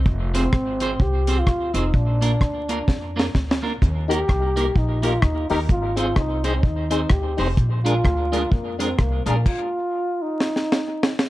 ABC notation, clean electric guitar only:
X:1
M:4/4
L:1/16
Q:"Swing" 1/4=128
K:Bbmix
V:1 name="Clean electric guitar"
z2 [CFAc] z3 [CFAc] z3 [CFAc] z3 [CFAc] z | z2 [B,DFB] z3 [B,DFB] z3 [B,DFB] z3 [B,DFB] z | z2 [B,EGB] z3 [B,EGB] z3 [B,EGB] z3 [B,EGB] z | z2 [CEAc] z3 [CEAc] z3 [CEAc] z3 [CEAc] z |
z2 [A,DFB] z3 [A,DFB] z3 [A,DFB] z3 [A,DFB] z | z16 |]